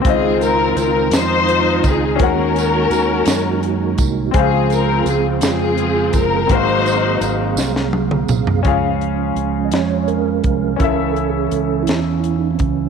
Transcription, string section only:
\new Staff \with { instrumentName = "String section" } { \time 6/8 \key des \major \tempo 4. = 56 << { aes'8 bes'8 bes'8 c''4 aes'8 | bes'2~ bes'8 r8 | aes'8 bes'8 aes'8 aes'4 bes'8 | c''4 r2 |
r2. | r2. | } \\ { <c' f'>4. <ees' f'>4. | <des' ges'>2~ <des' ges'>8 r8 | <c' f'>4. <c' f'>4. | <ees' ges'>4. r4. |
r2. | r2. | } >> }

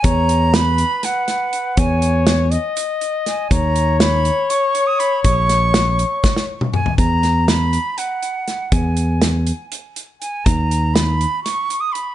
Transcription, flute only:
\new Staff \with { instrumentName = "Flute" } { \time 7/8 \key e \lydian \tempo 4 = 121 ais''4 b''4 fis''4. | gis''4 r2 gis''8 | ais''4 b''4 cis'''8. dis'''16 b''8 | cis'''2~ cis'''8 r8 gis''8 |
ais''4 b''4 fis''4. | gis''4 r2 gis''8 | ais''4 b''4 cis'''8. dis'''16 b''8 | }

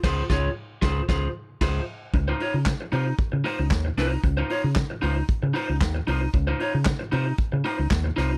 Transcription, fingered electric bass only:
\new Staff \with { instrumentName = "Fingered electric bass" } { \clef bass \time 4/4 \key des \major \tempo 4 = 114 des,8 des,8 r8 des,8 des,8 r8 des,8 r8 | des,8 r16 des8 r16 c8 r16 des16 r16 des,16 ees,8 c,8 | des,8 r16 des8 r16 des,8 r16 des16 r16 des,16 ees,8 c,8 | des,8 r16 des8 r16 c8 r16 des16 r16 des,16 ees,8 c,8 | }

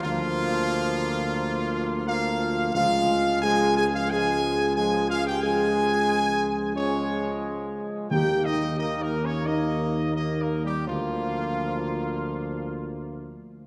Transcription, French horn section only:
\new Staff \with { instrumentName = "French horn section" } { \time 4/4 \key bes \dorian \tempo 4 = 89 f2. f'4 | f'4 aes'8 aes'16 f'16 aes'4 aes'8 f'16 g'16 | aes'2 des'4 r4 | g'8 ees'8 \tuplet 3/2 { ees'8 bes8 des'8 } ees'4 \tuplet 3/2 { ees'8 bes8 g8 } |
f2. r4 | }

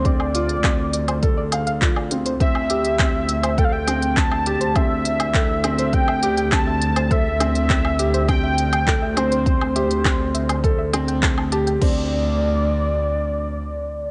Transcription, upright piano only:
\new Staff \with { instrumentName = "Upright piano" } { \time 4/4 \key a \phrygian \tempo 4 = 102 c'8 f'8 c'8 r8 a'8 f''8 f'8 c'8 | c'8 g'8 c'8 r8 a'8 c'8 c'8 g'8 | c'8 r8 a'8 c'8 c'8 g'8 c'8 r8 | a'8 c'8 c'8 g'8 c'8 r8 a'8 c'8 |
c'8 g'8 c'8 r8 a'8 c'8 c'8 g'8 | c'8 r2. r8 | }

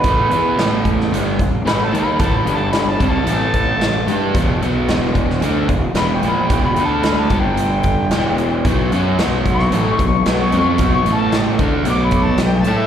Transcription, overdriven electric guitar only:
\new Staff \with { instrumentName = "Overdriven electric guitar" } { \clef bass \time 4/4 \key a \major \tempo 4 = 112 <a, e a>8 <e b e'>8 <a, e a>4 <g, d g>8 <a, e>8 <a, e a>8 <dis ais dis'>8 | <a, e a>8 <g, d g>4 <c g c'>8 <a, e a>4 <a, e>8 <g d' g'>8 | <e, b, e>8 <b, fis b>8 <e, b, e>4 <d a d'>8 <e, b,>8 <e, b, e>8 <ais, f ais>8 | <e, b, e>8 <d a d'>4 <g, d g>4. <e, b, e>4 |
<b, fis b>8 <fis cis' fis'>8 <b, fis b>4 <a, e a>8 <b, fis>8 <b, fis b>8 <f c' f'>8 | <b, fis b>8 <a, e a>4 <d a d'>8 <b, fis b>4 <b, fis>8 <a e' a'>8 | }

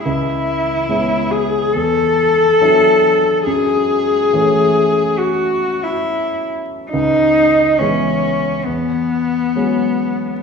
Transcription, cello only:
\new Staff \with { instrumentName = "Cello" } { \time 4/4 \key e \major \tempo 4 = 69 e'4. gis'8 a'2 | gis'2 fis'8. e'8. r8 | dis'4 cis'4 b2 | }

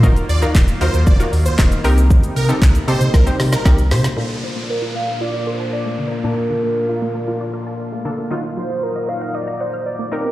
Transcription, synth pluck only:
\new Staff \with { instrumentName = "Synth pluck" } { \time 4/4 \key bes \major \tempo 4 = 116 <ees' f' ges' bes'>8 r16 <ees' f' ges' bes'>8 r16 <ees' f' ges' bes'>8 r16 <ees' f' ges' bes'>8 r16 <ees' f' ges' bes'>8 <c' ees' g' bes'>8~ | <c' ees' g' bes'>8 r16 <c' ees' g' a'>8 r16 <c' ees' g' a'>8 r16 <c' ees' g' c''>8 r16 <c' ees' g' bes'>8 r8 | <bes d' a'>1 | <bes d' a''>2.~ <bes d' a''>8 <bes d' a'>8 |
<ges ees' f'>2.~ <ges ees' f'>8 <c' ees' bes'>8 | }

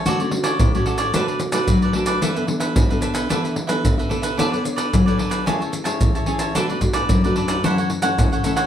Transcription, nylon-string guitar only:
\new Staff \with { instrumentName = "Nylon-string guitar" } { \time 4/4 \key b \dorian \tempo 4 = 111 << { <a cis' fis'>16 <a cis' fis'>16 <a cis' fis'>8. <a cis' fis'>8. <a d' fis'>8 r16 <a d' fis'>8. <a d' fis'>8 | <b d' a'>16 <b d' a'>16 <b d' a'>8. <b d' a'>8. <b d' a'>8 r16 <b d' a'>8. <b d' a'>16 r16 | <d' a' cis''>16 <d' a' cis''>16 <d' a' cis''>8. <d' a' cis''>8. <cis' e' gis'>8. <cis' e' gis'>8. <cis' e' gis'>8 | <a d' fis'>16 <a d' fis'>16 <a d' fis'>8. <a d' fis'>8. <e a cis'>8. <e a cis'>8. <e a cis'>16 r16 | } \\ { d4 a,4 b,4 fis4 | e4 b,4 e4 b,4 | b4 fis4 a4 e4 | b,4 fis,4 fis,4 cis4 | } >> }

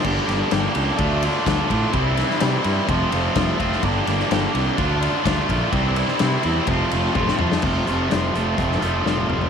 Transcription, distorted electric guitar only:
\new Staff \with { instrumentName = "Distorted electric guitar" } { \time 4/4 \key f \major \tempo 4 = 127 <g, d g bes d' g'>8 <g bes d' g'>8 <g, d g bes d' g'>8 <g bes d' g'>8 <d a d' f'>8 <a d' f'>8 <d a d' f'>8 <a d' f'>8 | <c e g c' e'>8 <g c' e'>8 <c e g c' e'>8 <g c' e'>8 <f, c f a c' f'>8 <f a c' f'>8 <f a c' f'>8 <f a c' f'>8 | <g, d g bes d' g'>8 <g bes d' g'>8 <g, d g bes d' g'>8 <g bes d' g'>8 <d a d' f'>8 <a d' f'>8 <d a d' f'>8 <a d' f'>8 | <c e g c' e'>8 <g c' e'>8 <c e g c' e'>8 <g c' e'>8 <f, c f a c' f'>8 <f a c' f'>8 <f a c' f'>8 <f a c' f'>8 |
<f, c f a c' f'>8 <f a c' f'>4 <f a c' f'>4 <f a c' f'>8 <f, c f a c' f'>8 <f a c' f'>8 | }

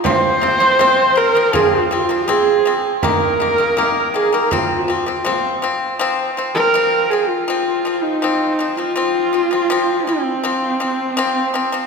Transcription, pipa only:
\new Staff \with { instrumentName = "Pipa" } { \clef bass \time 4/4 \tempo 4 = 81 <f c'>8 <f c'>16 <f c'>16 <f c'>8 <f c'>16 <f c'>16 <f c'>8 <f c'>16 <f c'>16 <f c'>8 <f c'>8 | <ees bes>8 <ees bes>16 <ees bes>16 <ees bes>8 <ees bes>16 <ees bes>16 <f c'>8 <f c'>16 <f c'>16 <f c'>8 <f c'>8 | <f c'>8 <f c'>16 <f c'>16 <f c'>8 <f c'>8 <f c'>8 <f c'>8 <f c'>8 <f c'>16 <f c'>16 | <f c'>8 <f c'>16 <f c'>16 <f c'>8 <f c'>8 <f c'>8 <f c'>8 <f c'>8 <f c'>16 <f c'>16 | }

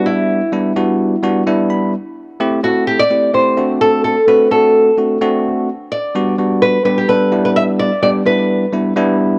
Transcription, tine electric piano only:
\new Staff \with { instrumentName = "Tine electric piano" } { \time 4/4 \key e \minor \tempo 4 = 128 << { r2. e''8 b''8 | r1 | r1 | r1 |
r1 | } \\ { <g b d' e'>8 r8 <g b d' e'>8 <g b d' fis'>4 <g b d' fis'>8 <g b d' e'>4 | r4 <a c' e' g'>8 <a c' e' a'>4 <a c' e' g'>8 <a c' e' g'>8 <a c' d' fis'>8~ | <a c' d' fis'>8 r8 <a c' d' fis'>8 <a c' d' fis'>4 <a c' d' fis'>8 <a c' d' fis'>4 | r4 <g b d' fis'>8 <g b d' fis'>4 <g b d' g'>8 <g b d' a'>8 <g b d' e'>8~ |
<g b d' e'>8 r8 <g b d' g'>8 <g b d' e'>4 <g b d' e'>8 <g b d' e'>4 | } >> }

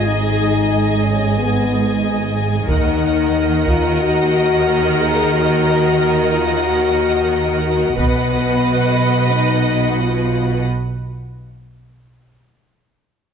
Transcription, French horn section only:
\new Staff \with { instrumentName = "French horn section" } { \time 4/4 \key ees \minor \tempo 4 = 90 ees'4. des'8 ces'4. r8 | ees'4. f'8 ges'4. aes'8 | ges'4. f'8 ges'4. ges'8 | b2 dis'4 f'4 |
r1 | }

